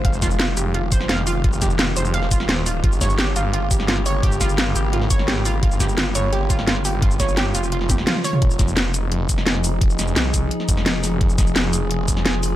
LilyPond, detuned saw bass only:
\new Staff \with { instrumentName = "Detuned saw bass" } { \clef bass \time 4/4 \key f \minor \tempo 4 = 172 f,,4. f,,2~ f,,8 | f,,4. f,,4 f,,8 ees,,4 | g,,4. g,,2~ g,,8 | g,,4. aes,,2~ aes,,8 |
g,,4. g,,2~ g,,8 | g,,4. f,,4. r4 | f,,1 | f,,8 f,,8 c,4 r8 f,,4. |
f,,1 | }